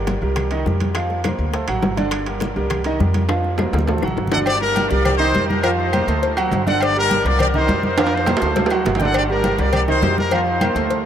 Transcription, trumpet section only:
4.31 A4 F#5
4.46 G4 D5
4.61 D4 A#4
4.89 F4 D5
5.05 G4 D5
5.17 D#4 C5
5.47 D4 A#4
5.62 F4 A#4
5.78 D#4 C5
6.67 A4 F#5
6.83 G4 D5
6.98 D4 A#4
7.26 F4 D5
7.41 G4 D5
7.56 D#4 C5
7.84 D#4 C5
8.01 F4 A#4
8.15 D#4 C5
8.96 G5
9.01 A4 F#5
9.17 G4 D5
9.30 D4 A#4
9.59 F4 D5
9.74 G4 D5
9.88 D#4 C5
10.18 D4 A#4
10.33 F4 A#4
10.46 D#4 C5

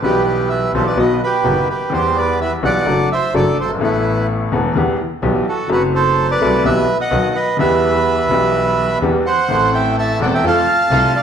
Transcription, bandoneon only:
0.03 G4 B4
0.25 G4 B4
0.49 B4 E5
0.74 A4 C5
0.87 B4 D5
0.99 B4 D#5
1.23 G4 B4
1.70 G4 B4
1.93 G4 C5
2.16 B4 D5
2.41 B4 E5
2.65 D5 F#5
3.12 C5 E5
3.36 A4 D5
3.60 A4 C5
3.83 E4 B4
5.48 F#4 A4
5.72 F#4 B4
5.95 A4 C5
6.31 B4 D5
6.65 B4 E5
7.01 D#5 F#5
7.35 B4 D#5
7.59 B4 E5
9.26 C5 F#5
9.74 E5 G5
9.99 E5 A5
10.22 D5 F#5
10.34 E5 G5
10.47 F5 A5
11.16 D5 F5

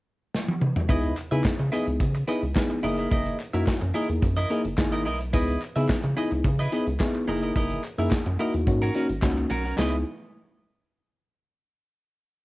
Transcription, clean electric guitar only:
0.89 E4 B4 D#5
1.17 muted clean electric guitar stroke
1.31 E4 B4 E5
1.59 muted clean electric guitar stroke
1.72 E4 B4 D#5
1.87 muted clean electric guitar stroke
2.00 muted clean electric guitar stroke
2.15 muted clean electric guitar stroke
2.28 E4 B4 D#5
2.42 muted clean electric guitar stroke
2.56 muted clean electric guitar stroke
2.70 muted clean electric guitar stroke
2.83 E4 A#4 D#5
2.98 E4 A#4 D#5
3.11 E4 A#4 D#5
3.39 muted clean electric guitar stroke
3.53 E4 A#4 E5
3.81 muted clean electric guitar stroke
3.94 E4 A#4 D#5
4.09 muted clean electric guitar stroke
4.22 muted clean electric guitar stroke
4.37 E4 A#4 D#5
4.50 E4 A#4 D#5
4.65 muted clean electric guitar stroke
4.78 muted clean electric guitar stroke
4.92 E4 A#4 D#5
5.05 E4 A#4 D#5
5.20 muted clean electric guitar stroke
5.33 E4 B4 D#5
5.61 muted clean electric guitar stroke
5.76 E4 B4 E5
6.04 muted clean electric guitar stroke
6.17 E4 B4 D#5
6.32 muted clean electric guitar stroke
6.45 muted clean electric guitar stroke
6.59 E4 B4 D#5
6.72 E4 B4 D#5
6.87 muted clean electric guitar stroke
7.00 muted clean electric guitar stroke
7.15 muted clean electric guitar stroke
7.28 E4 A#4 D#5
7.43 E4 A#4 D#5
7.56 E4 A#4 D#5
7.84 muted clean electric guitar stroke
7.98 E4 A#4 E5
8.26 muted clean electric guitar stroke
8.39 E4 A#4 D#5
8.67 muted clean electric guitar stroke
8.82 C#4 F#4 A#4
8.95 C#4 F#4 A#4
9.22 muted clean electric guitar stroke
9.37 muted clean electric guitar stroke
9.50 C#4 F#4 A#4
9.65 C#4 F#4 A#4
9.78 E4 B4 D#5

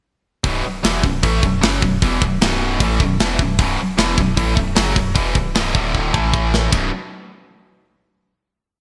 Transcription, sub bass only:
0.44 B0
0.64 B0
0.84 E1
1.03 B0
1.23 A1
1.43 B0
1.63 F#1
1.82 B0
2.02 E1
2.21 B0
2.42 B0
2.80 A1
3.00 B0
3.20 E1
3.39 B0
3.59 B0
3.78 B0
3.98 E1
4.18 B0
4.37 A1
4.57 B0
4.78 F#1
4.96 B0
5.15 E1
5.35 B0
5.55 B0
5.75 D1
6.14 A1
6.72 B0

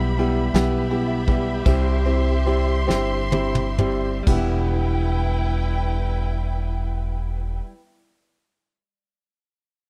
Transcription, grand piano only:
0.18 B3 E4 G4
0.54 B3 E4 G4
0.90 B3 E4 G4
1.28 B3 E4 G4
1.66 C4 E4 G4
2.06 C4 E4 G4
2.46 C4 E4 G4
2.87 C4 E4 G4
3.32 C4 E4 G4
3.79 C4 E4 G4
4.27 B3 E4 G4

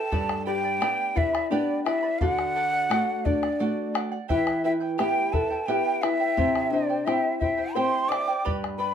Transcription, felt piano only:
Already playing: A4
0.47 G4
1.15 E4
1.50 D4
1.86 E4
2.22 F#4
3.26 D4
4.30 E4
4.65 E4
4.99 G4
5.34 A4
5.69 G4
6.04 E4
6.71 D4
7.06 E4
7.42 E4
7.75 C5
8.09 D5
8.78 B4

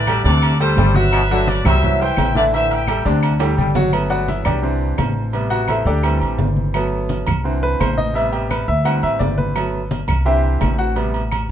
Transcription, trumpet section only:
Already playing: B4 D5
0.25 A4 D5
0.61 A4 C5
0.95 B4 E5
1.49 B4 D5
1.66 C5 E5
2.01 E5 G5
2.36 B4 D5
2.54 C5 E5
2.72 E5 G5

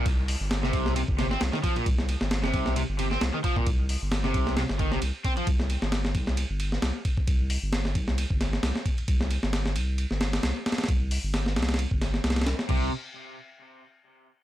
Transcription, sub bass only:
0.06 C2
0.40 G1
0.74 C2
1.08 G1
1.41 C2
1.86 C2
2.21 G1
2.54 C2
2.89 G1
3.21 C2
3.67 C2
4.02 G1
4.34 C2
4.70 G1
5.02 C2
5.47 C2
5.82 G1
6.15 C2
6.50 G1
6.83 C2
7.28 C2
7.63 G1
7.95 C2
8.30 G1
8.63 C2
9.08 C2
9.43 G1
9.76 C2
10.11 G1
10.43 C2
10.88 C2
11.24 G1
11.56 C2
11.91 G1
12.24 C2
12.69 C2

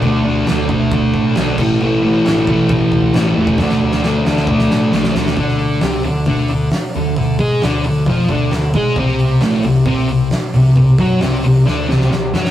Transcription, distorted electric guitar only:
0.02 D3 A3
0.07 D4
0.25 D4
0.29 A3
0.46 D3 A3 D4
0.69 D4
0.73 A3
1.36 D3 A3
1.41 D4
1.58 E3 A3
1.62 A2
1.81 A2 E3 A3
2.03 A3
2.07 E3
2.25 A2 E3
2.29 A3
2.47 A3
2.51 E3
3.13 A2 E3
3.17 A3
3.36 A3
3.40 E3
3.59 D3 A3 D4
3.81 A3 D4
4.03 D3 A3 D4
4.25 A3 D4
4.93 D3 A3
4.97 D4
5.14 D4
5.18 A3
5.37 D3 D4
5.82 C3 C4
6.05 D3
6.27 D3 D4
6.50 D3
6.96 D3
7.17 D3
7.39 G#3 G#4
7.63 D3 D4
7.85 D3
8.08 F3 F4
8.30 D3 D4
8.53 D3
8.75 G#3 G#4
8.98 C3 C4
9.42 A2 A3
9.65 C3
9.86 C3 C4
10.09 C3
10.54 C3
10.77 C3
10.99 F#3 F#4
11.22 C3 C4
11.45 C3
11.66 D3 D4
11.88 C3 C4
12.11 C3
12.34 F#3 F#4

